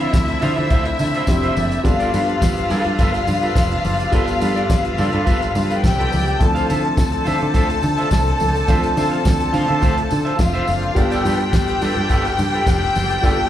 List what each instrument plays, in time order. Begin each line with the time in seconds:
Already playing: tonewheel organ D3 F3 A3 C4 D4, grand piano F3 C4 D4 E4 A4, violin section E4 E5
0.00 clean electric guitar F4 C5 F5, closed hi-hat
0.13 fingered electric bass D2, muted clean electric guitar stroke, kick, snare, closed hi-hat, tambourine, high conga
0.28 muted clean electric guitar stroke, closed hi-hat
0.42 fingered electric bass D3, clean electric guitar F4 C5 F5, open hi-hat, tambourine, muted conga, low conga
0.56 fingered electric bass D3, clean electric guitar F4 C5 E5, closed hi-hat
0.70 fingered electric bass D2, clean electric guitar F4 C5 E5, kick, closed hi-hat, tambourine, muted conga
0.85 muted clean electric guitar stroke, closed hi-hat
0.99 fingered electric bass D3, muted clean electric guitar stroke, open hi-hat, tambourine, muted conga, low conga
1.14 clean electric guitar F4 C5 E5, closed hi-hat, tambourine
1.27 fingered electric bass F1, grand piano F3 C4 D4 E4 G4, muted clean electric guitar stroke, kick, snare, closed hi-hat, tambourine, high conga
1.42 clean electric guitar F4 C5 E5, closed hi-hat
1.56 fingered electric bass F#1, muted clean electric guitar stroke, open hi-hat, tambourine, high conga
1.71 muted clean electric guitar stroke, closed hi-hat, tambourine
1.84 fingered electric bass G1, grand piano G3 B3 D4 F4 A4, tonewheel organ G3 A4 B4, violin section F4 F5, muted clean electric guitar stroke, kick, closed hi-hat, tambourine
2.00 clean electric guitar F4 A4 D5, closed hi-hat, tambourine
2.13 fingered electric bass G2, clean electric guitar F4 A4 B4, open hi-hat, tambourine, muted conga
2.28 muted clean electric guitar stroke, closed hi-hat
2.42 fingered electric bass G1, kick, snare, closed hi-hat, tambourine, high conga
2.57 muted clean electric guitar stroke, closed hi-hat
2.70 fingered electric bass G2, clean electric guitar F4 A4 B4, snare, open hi-hat, tambourine, muted conga
2.85 fingered electric bass G2, muted clean electric guitar stroke, closed hi-hat
2.98 fingered electric bass G1, clean electric guitar F4 A4 B4, kick, closed hi-hat, tambourine, muted conga
3.14 muted clean electric guitar stroke, closed hi-hat, tambourine
3.27 fingered electric bass G2, muted clean electric guitar stroke, open hi-hat, tambourine, muted conga, low conga
3.42 clean electric guitar F4 A4 B4, closed hi-hat, tambourine
3.55 fingered electric bass F1, muted clean electric guitar stroke, kick, snare, closed hi-hat, tambourine, high conga
3.71 muted clean electric guitar stroke, closed hi-hat
3.84 fingered electric bass F#1, open hi-hat, tambourine, high conga
3.99 muted clean electric guitar stroke, closed hi-hat, tambourine
4.12 fingered electric bass G1, grand piano G3 B3 D4 F4 A4, clean electric guitar F4 A4 B4, kick, closed hi-hat, tambourine
4.27 muted clean electric guitar stroke, closed hi-hat, tambourine
4.41 fingered electric bass G2, clean electric guitar F4 A4 B4, open hi-hat, tambourine, muted conga
4.56 clean electric guitar F4 A4 D5, closed hi-hat
4.69 fingered electric bass G1, muted clean electric guitar stroke, kick, snare, closed hi-hat, tambourine, high conga
4.85 muted clean electric guitar stroke, closed hi-hat
4.98 fingered electric bass G2, clean electric guitar F4 A4 D5, open hi-hat, tambourine, low conga
5.13 fingered electric bass G2, clean electric guitar F4 A4 B4, closed hi-hat
5.26 fingered electric bass G1, clean electric guitar F4 A4 B4, kick, closed hi-hat, tambourine, muted conga
5.42 muted clean electric guitar stroke, closed hi-hat, tambourine
5.55 fingered electric bass G2, muted clean electric guitar stroke, open hi-hat, tambourine, muted conga, low conga
5.69 clean electric guitar F4 A4 B4, closed hi-hat, tambourine
5.83 fingered electric bass C2, violin section G4 G5, muted clean electric guitar stroke, kick, snare, closed hi-hat, tambourine, high conga
5.98 clean electric guitar F4 A4 B4, closed hi-hat
6.12 fingered electric bass C#2, muted clean electric guitar stroke, open hi-hat, tambourine, high conga
6.27 muted clean electric guitar stroke, closed hi-hat
6.39 fingered electric bass D2, tonewheel organ D3 A3 C4 D4, grand piano F3 C4 D4 E4 A4, violin section A4 A5, muted clean electric guitar stroke, kick, closed hi-hat, tambourine
6.55 clean electric guitar F4 C5 F5, closed hi-hat, tambourine
6.68 fingered electric bass D3, clean electric guitar F4 C5 E5, open hi-hat, tambourine, muted conga
6.84 muted clean electric guitar stroke, closed hi-hat
6.97 fingered electric bass D2, kick, snare, closed hi-hat, tambourine, high conga
7.12 muted clean electric guitar stroke, closed hi-hat
7.25 fingered electric bass D3, clean electric guitar F4 C5 E5, open hi-hat, tambourine, muted conga
7.40 fingered electric bass D3, muted clean electric guitar stroke, closed hi-hat
7.54 fingered electric bass D2, clean electric guitar F4 C5 E5, kick, closed hi-hat, tambourine, muted conga
7.70 muted clean electric guitar stroke, closed hi-hat, tambourine
7.83 fingered electric bass D3, muted clean electric guitar stroke, open hi-hat, tambourine, muted conga, low conga
7.98 clean electric guitar F4 C5 E5, closed hi-hat
8.11 fingered electric bass C2, muted clean electric guitar stroke, kick, snare, closed hi-hat, tambourine, high conga
8.27 muted clean electric guitar stroke, closed hi-hat
8.40 fingered electric bass C#2, open hi-hat, tambourine, high conga
8.54 muted clean electric guitar stroke, closed hi-hat, tambourine
8.67 fingered electric bass D2, grand piano F3 C4 D4 F4 C5, clean electric guitar F4 C5 E5, kick, closed hi-hat, tambourine
8.83 muted clean electric guitar stroke, closed hi-hat, tambourine
8.97 fingered electric bass D3, clean electric guitar F4 C5 E5, open hi-hat, tambourine, muted conga
9.11 clean electric guitar F4 C5 F5, closed hi-hat
9.25 fingered electric bass D2, muted clean electric guitar stroke, kick, snare, closed hi-hat, tambourine, high conga
9.40 muted clean electric guitar stroke, closed hi-hat
9.53 fingered electric bass D3, clean electric guitar F4 C5 F5, open hi-hat, tambourine, muted conga, low conga
9.68 fingered electric bass D3, clean electric guitar F4 C5 E5, closed hi-hat
9.81 fingered electric bass D2, clean electric guitar F4 C5 E5, kick, closed hi-hat, tambourine, muted conga
9.97 muted clean electric guitar stroke, closed hi-hat
10.10 fingered electric bass D3, muted clean electric guitar stroke, open hi-hat, tambourine, muted conga, low conga
10.25 clean electric guitar F4 C5 E5, closed hi-hat
10.39 fingered electric bass F1, violin section F4 F5, kick, snare, closed hi-hat, tambourine, high conga
10.54 clean electric guitar F4 C5 E5, closed hi-hat
10.67 fingered electric bass F#1, muted clean electric guitar stroke, open hi-hat, tambourine, high conga
10.82 muted clean electric guitar stroke, closed hi-hat
10.95 fingered electric bass G1, grand piano G3 B3 D4 F4 A4, tonewheel organ G3 D4 F4 A4 B4, violin section G4 G5, muted clean electric guitar stroke, kick, closed hi-hat, tambourine
11.11 clean electric guitar F4 A4 D5, closed hi-hat, tambourine
11.25 fingered electric bass G2, clean electric guitar F4 A4 B4, open hi-hat, tambourine, muted conga
11.40 muted clean electric guitar stroke, closed hi-hat
11.53 fingered electric bass G1, kick, snare, closed hi-hat, tambourine, high conga
11.68 muted clean electric guitar stroke, closed hi-hat
11.81 fingered electric bass G2, clean electric guitar F4 A4 B4, snare, open hi-hat, tambourine
11.96 fingered electric bass G2, muted clean electric guitar stroke, closed hi-hat
12.09 fingered electric bass G1, clean electric guitar F4 A4 B4, kick, closed hi-hat, tambourine, muted conga
12.25 muted clean electric guitar stroke, closed hi-hat, tambourine
12.38 fingered electric bass G2, muted clean electric guitar stroke, open hi-hat, tambourine, muted conga, low conga
12.54 clean electric guitar F4 A4 B4, closed hi-hat
12.67 fingered electric bass F1, kick, snare, closed hi-hat, tambourine, high conga
12.83 muted clean electric guitar stroke, closed hi-hat
12.95 fingered electric bass F#1, open hi-hat, tambourine, high conga
13.10 muted clean electric guitar stroke, closed hi-hat, tambourine
13.22 fingered electric bass G1, grand piano G3 B3 D4 F4 G4, clean electric guitar F4 A4 B4, kick, high tom, tambourine
13.32 grand piano A4
13.38 muted clean electric guitar stroke